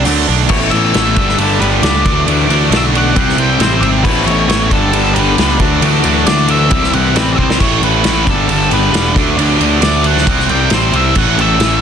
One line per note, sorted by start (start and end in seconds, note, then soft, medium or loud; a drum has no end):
0.05 0.26 D2 medium
0.05 0.26 D3 medium
0.05 0.26 D3 loud
0.05 0.27 F#3 loud
0.05 0.27 A3 loud
0.05 0.27 A3 medium
0.05 0.27 D4 loud
0.05 open hi-hat medium
0.27 0.48 B1 medium
0.27 0.48 D3 medium
0.27 0.48 F#3 medium
0.27 0.48 A3 medium
0.27 0.49 D4 medium
0.48 0.71 A1 medium
0.48 0.71 A2 medium
0.48 0.71 E3 medium
0.48 0.72 A3 medium
0.48 0.94 B3 medium
0.48 0.72 C#4 medium
0.48 0.73 E4 loud
0.48 0.73 A4 medium
0.48 0.56 C#5 medium
0.48 0.71 C#5 medium
0.48 kick loud
0.48 crash loud
0.70 0.93 A1 medium
0.70 0.92 A2 medium
0.70 0.92 E3 medium
0.70 0.93 A3 medium
0.70 0.94 C#4 medium
0.70 0.94 E4 medium
0.70 0.95 A4 medium
0.70 0.96 C#5 medium
0.70 1.40 E5 loud
0.70 ride medium
0.93 1.16 A1 medium
0.93 1.15 A2 medium
0.93 1.15 E3 medium
0.93 1.16 A3 medium
0.93 1.16 B3 medium
0.93 1.16 C#4 medium
0.93 1.16 E4 medium
0.93 1.15 A4 medium
0.93 1.15 C#5 medium
0.93 snare loud
0.93 ride medium
1.16 1.37 G1 medium
1.16 1.35 G2 medium
1.16 1.36 D3 medium
1.16 1.36 G3 loud
1.16 1.36 A3 medium
1.16 1.37 B3 medium
1.16 1.38 D4 loud
1.16 1.38 A4 medium
1.16 1.39 B4 medium
1.16 kick loud
1.16 ride medium
1.29 snare soft
1.36 1.59 G1 medium
1.36 1.59 G2 medium
1.36 1.59 D3 medium
1.36 1.60 G3 loud
1.36 1.81 A3 medium
1.36 1.60 B3 loud
1.36 1.61 D4 medium
1.36 1.59 A4 medium
1.36 1.60 A4 medium
1.36 1.59 B4 medium
1.36 ride medium
1.60 1.81 G1 medium
1.60 1.80 G2 medium
1.60 1.81 D3 medium
1.60 1.82 G3 medium
1.60 1.82 B3 medium
1.60 1.82 D4 medium
1.60 1.83 A4 medium
1.60 1.66 B4 medium
1.60 1.83 B4 medium
1.60 ride medium
1.81 2.04 C#2 medium
1.81 2.03 G2 medium
1.81 2.03 D3 medium
1.81 2.04 G3 medium
1.81 2.04 A3 medium
1.81 2.04 B3 medium
1.81 2.04 D4 medium
1.81 2.04 A4 loud
1.81 2.03 B4 loud
1.81 2.24 D5 medium
1.81 snare loud
1.81 ride medium
2.03 2.26 D2 medium
2.03 2.25 D3 medium
2.03 2.25 E3 medium
2.03 2.26 F#3 medium
2.03 2.27 A3 medium
2.03 2.26 D4 medium
2.03 2.27 F#4 medium
2.03 2.28 D5 medium
2.03 kick loud
2.03 ride medium
2.26 2.48 D2 medium
2.26 2.47 D3 medium
2.26 2.70 E3 medium
2.26 2.48 F#3 medium
2.26 2.49 A3 medium
2.26 2.49 D4 medium
2.26 2.48 F#4 medium
2.26 2.47 D5 medium
2.26 ride medium
2.48 2.70 D2 medium
2.48 2.71 D3 medium
2.48 2.71 F#3 medium
2.48 2.72 A3 loud
2.48 2.72 D4 medium
2.48 2.72 F#4 medium
2.48 2.73 D5 medium
2.48 ride medium
2.71 3.13 B1 medium
2.71 2.93 D3 medium
2.71 3.15 E3 medium
2.71 2.93 F#3 medium
2.71 2.94 A3 medium
2.71 2.94 D4 medium
2.71 2.92 F#4 medium
2.71 2.91 D5 loud
2.71 snare loud
2.71 ride medium
2.77 2.82 E5 medium
2.92 3.14 D3 medium
2.92 3.15 F#3 medium
2.92 3.15 A3 medium
2.92 3.16 D4 medium
2.92 3.14 F#4 medium
2.92 3.14 D5 medium
2.92 ride medium
2.98 3.37 F#5 loud
3.15 3.36 C2 medium
3.15 3.36 C3 medium
3.15 3.36 G3 loud
3.15 3.37 C4 loud
3.15 3.37 E4 loud
3.15 3.36 G4 loud
3.15 3.34 C5 medium
3.15 kick loud
3.15 ride medium
3.29 snare soft
3.35 3.59 C2 medium
3.35 3.57 C3 medium
3.35 3.58 G3 medium
3.35 3.58 C4 medium
3.35 3.59 E4 loud
3.35 3.59 G4 medium
3.35 3.60 C5 medium
3.35 ride medium
3.40 3.62 G5 medium
3.59 3.81 A1 medium
3.59 3.80 C3 medium
3.59 3.81 G3 medium
3.59 3.81 C4 medium
3.59 3.81 E4 medium
3.59 3.80 G4 loud
3.59 3.79 C5 loud
3.59 3.82 C5 medium
3.59 snare loud
3.59 ride medium
3.80 4.03 G#1 medium
3.80 4.03 C3 medium
3.80 4.03 G3 medium
3.80 4.04 C4 medium
3.80 4.04 E4 medium
3.80 4.03 G4 medium
3.80 4.02 C5 medium
3.80 3.87 E5 medium
3.80 ride medium
4.04 4.26 A1 medium
4.04 4.24 A2 medium
4.04 4.25 E3 medium
4.04 4.25 A3 loud
4.04 4.46 B3 medium
4.04 4.26 C#4 medium
4.04 4.26 E4 loud
4.04 4.25 A4 medium
4.04 4.25 B4 medium
4.04 4.23 C#5 medium
4.04 kick loud
4.04 crash medium
4.24 4.47 A1 medium
4.24 4.48 A2 medium
4.24 4.48 E3 medium
4.24 4.48 A3 medium
4.24 4.48 C#4 loud
4.24 4.49 E4 medium
4.24 4.48 A4 medium
4.24 4.48 C#5 medium
4.24 4.73 C#5 medium
4.24 ride medium
4.48 4.70 A1 medium
4.48 4.69 A2 medium
4.48 4.69 E3 medium
4.48 4.70 A3 medium
4.48 4.69 B3 medium
4.48 4.70 C#4 medium
4.48 4.71 E4 medium
4.48 4.68 A4 medium
4.48 4.70 C#5 loud
4.48 snare loud
4.48 ride medium
4.69 4.92 G1 medium
4.69 4.90 G2 medium
4.69 4.91 D3 loud
4.69 4.91 G3 medium
4.69 4.92 B3 loud
4.69 4.92 D4 loud
4.69 4.94 A4 medium
4.69 5.18 A4 medium
4.69 kick medium
4.69 ride medium
4.91 5.15 G1 medium
4.91 5.12 G2 loud
4.91 5.13 D3 loud
4.91 5.13 G3 loud
4.91 5.14 B3 medium
4.91 5.14 D4 loud
4.91 ride medium
4.96 5.14 A4 medium
5.14 5.37 G1 medium
5.14 5.34 G2 medium
5.14 5.36 D3 medium
5.14 5.36 G3 medium
5.14 5.37 B3 medium
5.14 5.37 D4 loud
5.14 5.38 A4 medium
5.14 5.56 B4 medium
5.14 ride medium
5.36 5.59 C#2 medium
5.36 5.58 G2 medium
5.36 5.57 D3 medium
5.36 5.58 G3 medium
5.36 5.59 B3 medium
5.36 5.59 D4 medium
5.36 5.59 A4 loud
5.36 snare loud
5.36 ride loud
5.58 5.81 D2 medium
5.58 5.80 D3 medium
5.58 5.81 E3 medium
5.58 5.81 F#3 loud
5.58 5.81 A3 medium
5.58 5.82 D4 loud
5.58 5.83 F#4 medium
5.58 kick loud
5.58 ride medium
5.82 6.03 D2 medium
5.82 6.01 D3 medium
5.82 6.25 E3 medium
5.82 6.02 F#3 loud
5.82 6.02 A3 medium
5.82 6.03 D4 loud
5.82 6.02 F#4 loud
5.82 ride medium
6.02 6.26 D2 medium
6.02 6.24 D3 medium
6.02 6.25 F#3 medium
6.02 6.25 A3 medium
6.02 6.26 D4 medium
6.02 6.27 F#4 medium
6.02 ride medium
6.25 6.69 D2 medium
6.25 6.46 D3 medium
6.25 6.68 E3 medium
6.25 6.47 F#3 medium
6.25 6.48 A3 medium
6.25 6.49 D4 medium
6.25 6.46 F#4 medium
6.25 6.50 D5 medium
6.25 snare loud
6.25 ride medium
6.47 6.69 D3 medium
6.47 6.70 F#3 medium
6.47 6.70 A3 medium
6.47 6.71 D4 loud
6.47 6.69 F#4 medium
6.47 6.91 E5 loud
6.47 ride medium
6.69 6.92 C2 medium
6.69 6.92 C3 loud
6.69 7.14 E3 medium
6.69 6.92 G3 medium
6.69 6.92 C4 medium
6.69 6.93 E4 loud
6.69 kick loud
6.69 ride medium
6.84 snare soft
6.93 7.15 C2 medium
6.93 7.13 C3 medium
6.93 7.14 G3 medium
6.93 7.14 C4 loud
6.93 7.15 E4 medium
6.93 7.15 F#5 medium
6.93 ride medium
7.15 7.37 A1 medium
7.15 7.36 C3 medium
7.15 7.58 E3 medium
7.15 7.37 G3 medium
7.15 7.38 C4 loud
7.15 7.38 E4 medium
7.15 7.34 B4 medium
7.15 snare loud
7.15 ride loud
7.33 7.38 E5 medium
7.37 7.59 C2 medium
7.37 7.58 C3 medium
7.37 7.59 G3 medium
7.37 7.59 C4 medium
7.37 7.59 E4 medium
7.37 7.60 C5 medium
7.37 kick medium
7.50 snare medium
7.60 7.81 A1 medium
7.60 7.80 A2 medium
7.60 7.81 E3 loud
7.60 7.82 A3 medium
7.60 7.83 C#4 loud
7.60 7.83 E4 medium
7.60 7.81 C#5 medium
7.60 kick loud
7.60 crash medium
7.82 8.03 A1 medium
7.82 8.03 A2 medium
7.82 8.04 E3 medium
7.82 8.05 A3 medium
7.82 8.05 C#4 medium
7.82 8.05 E4 medium
7.82 8.29 B4 medium
7.82 ride medium
8.04 8.26 A1 medium
8.04 8.25 A2 medium
8.04 8.26 E3 medium
8.04 8.26 A3 medium
8.04 8.26 C#4 medium
8.04 8.27 E4 medium
8.04 snare loud
8.04 ride medium
8.26 8.48 G1 medium
8.26 8.48 G2 medium
8.26 8.48 D3 loud
8.26 8.49 G3 loud
8.26 8.50 B3 medium
8.26 8.50 D4 loud
8.26 8.70 A4 medium
8.26 kick loud
8.26 ride medium
8.49 8.70 G1 medium
8.49 8.71 G2 medium
8.49 8.72 D3 loud
8.49 8.72 G3 medium
8.49 8.73 B3 loud
8.49 8.74 D4 loud
8.49 ride medium
8.71 8.92 G1 medium
8.71 8.92 G2 medium
8.71 8.93 D3 medium
8.71 8.93 G3 medium
8.71 8.94 B3 medium
8.71 8.95 D4 loud
8.71 9.14 B4 medium
8.71 ride medium
8.93 9.14 E1 medium
8.93 9.15 G2 medium
8.93 9.15 D3 medium
8.93 9.15 G3 medium
8.93 9.15 B3 medium
8.93 9.16 D4 medium
8.93 snare loud
8.93 ride loud
9.16 9.37 D2 medium
9.16 9.37 D3 medium
9.16 9.37 F#3 medium
9.16 9.38 A3 loud
9.16 9.38 D4 loud
9.16 kick loud
9.16 ride medium
9.37 9.59 D2 medium
9.37 9.59 D3 medium
9.37 9.59 F#3 medium
9.37 9.60 A3 loud
9.37 9.60 D4 loud
9.37 ride medium
9.60 9.81 D2 medium
9.60 9.82 D3 medium
9.60 9.82 F#3 medium
9.60 9.83 A3 medium
9.60 9.84 D4 medium
9.60 ride medium
9.81 10.24 D2 loud
9.81 10.04 D3 medium
9.81 10.05 A3 medium
9.81 10.06 D4 medium
9.81 10.06 D5 medium
9.81 snare loud
9.81 ride loud
10.04 10.26 D3 medium
10.04 10.26 F#3 medium
10.04 10.27 A3 medium
10.04 10.27 D4 medium
10.04 10.50 F#5 loud
10.04 ride medium
10.17 snare soft
10.27 10.48 C2 medium
10.27 10.48 C3 medium
10.27 10.49 G3 loud
10.27 10.49 C4 loud
10.27 10.50 E4 loud
10.27 kick loud
10.27 ride loud
10.39 snare soft
10.49 10.70 C2 medium
10.49 10.71 C3 medium
10.49 10.71 G3 medium
10.49 10.72 C4 loud
10.49 10.72 E4 loud
10.49 10.73 G5 medium
10.49 ride medium
10.70 10.92 A1 medium
10.70 10.92 C3 medium
10.70 10.93 G3 medium
10.70 10.94 C4 medium
10.70 10.94 E4 medium
10.70 10.96 C5 medium
10.70 snare loud
10.70 ride loud
10.93 11.14 C2 medium
10.93 11.15 C3 medium
10.93 11.15 G3 medium
10.93 11.15 C4 medium
10.93 11.15 E4 medium
10.93 11.15 E5 loud
10.93 ride medium
11.15 11.37 A1 loud
11.15 11.36 A2 medium
11.15 11.37 E3 loud
11.15 11.37 A3 loud
11.15 11.38 C#4 loud
11.15 11.38 E4 medium
11.15 11.40 F#5 medium
11.15 kick loud
11.15 crash medium
11.37 11.59 A1 medium
11.37 11.58 A2 medium
11.37 11.58 E3 medium
11.37 11.60 A3 loud
11.37 11.60 C#4 medium
11.37 11.60 E4 loud
11.37 11.81 E5 loud
11.37 ride medium
11.59 11.81 A1 medium
11.59 11.81 A2 medium
11.59 11.81 E3 medium
11.59 11.81 A3 medium
11.59 11.81 C#4 loud
11.59 11.81 E4 loud
11.59 snare loud
11.59 ride medium